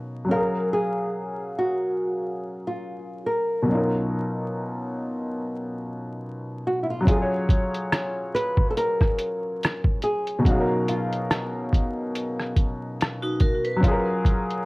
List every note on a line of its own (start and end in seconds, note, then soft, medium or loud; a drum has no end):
0.00 0.24 B2 medium
0.00 0.23 F#3 soft
0.00 0.27 C#4 medium
0.00 0.28 D#4 medium
0.00 0.31 A#4 medium
0.00 0.30 F5 medium
0.25 3.62 F#3 medium
0.25 3.64 C#4 soft
0.31 0.73 A#4 loud
0.31 3.66 F5 medium
0.36 3.67 G#4 medium
0.36 3.69 A#4 medium
0.73 1.54 G#4 medium
1.59 2.67 F#4 medium
2.67 3.26 F4 medium
3.27 6.18 A#4 medium
3.63 7.00 B2 medium
3.63 6.99 F#3 medium
3.69 7.03 C#4 medium
3.69 7.04 D#4 medium
3.74 7.06 F4 medium
3.74 7.07 A#4 medium
6.67 6.83 F#4 medium
6.83 6.89 E4 medium
6.90 7.08 F4 medium
7.01 10.38 F#3 medium
7.01 10.40 C#4 medium
7.07 10.42 F4 medium
7.07 8.34 G#4 medium
7.07 kick loud
7.07 closed hi-hat medium
7.12 10.43 G#4 medium
7.12 7.19 A4 medium
7.22 10.49 C#5 medium
7.49 kick medium
7.49 closed hi-hat medium
7.74 closed hi-hat soft
7.92 cross-stick loud
7.92 closed hi-hat medium
8.35 8.70 B4 loud
8.35 closed hi-hat medium
8.57 kick medium
8.70 8.76 A4 medium
8.77 10.03 A#4 medium
8.77 closed hi-hat medium
9.01 kick medium
9.01 cross-stick soft
9.19 closed hi-hat medium
9.63 cross-stick loud
9.63 closed hi-hat medium
9.84 kick medium
10.02 10.47 G#4 medium
10.02 closed hi-hat medium
10.27 closed hi-hat soft
10.39 13.76 B2 medium
10.39 13.75 F#3 medium
10.45 13.79 C#4 medium
10.45 13.80 D#4 medium
10.45 10.89 F#4 medium
10.45 kick loud
10.45 closed hi-hat medium
10.50 10.57 G#4 medium
10.50 13.82 F5 medium
10.60 13.87 A#4 medium
10.88 12.53 F4 medium
10.88 closed hi-hat medium
11.13 closed hi-hat soft
11.31 cross-stick loud
11.31 closed hi-hat medium
11.73 kick medium
11.73 closed hi-hat medium
12.15 closed hi-hat medium
12.39 cross-stick soft
12.56 kick medium
12.56 closed hi-hat medium
13.01 cross-stick medium
13.01 closed hi-hat medium
13.22 13.40 D#4 medium
13.22 13.40 F#4 medium
13.40 13.64 F#4 medium
13.40 13.64 A#4 medium
13.40 kick loud
13.40 closed hi-hat medium
13.65 14.05 B4 medium
13.65 closed hi-hat soft
13.76 14.65 F#3 medium
13.76 14.65 C#4 medium
13.83 14.65 F4 medium
13.83 kick loud
13.83 closed hi-hat medium
13.88 14.65 G#4 medium
13.88 14.65 A#4 medium
14.25 kick medium
14.25 closed hi-hat medium
14.51 closed hi-hat soft